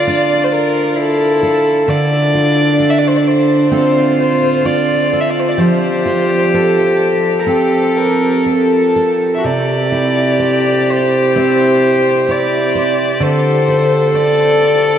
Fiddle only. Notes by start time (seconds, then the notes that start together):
Already playing: D5
0.44 C5
0.52 A#4
0.99 A4
1.89 D5
2.90 E5
2.98 D5
3.07 C5
3.16 D5
3.27 C5
3.74 C5
4.20 C5
4.65 D5
5.21 E5
5.30 D5
5.40 C5
5.48 D5
5.60 C5
6.54 A4
7.48 G4
7.97 A#4
8.48 A4
9.35 E5
9.45 D5
10.90 C5
11.35 C5
12.30 D5
13.23 C5
14.15 D5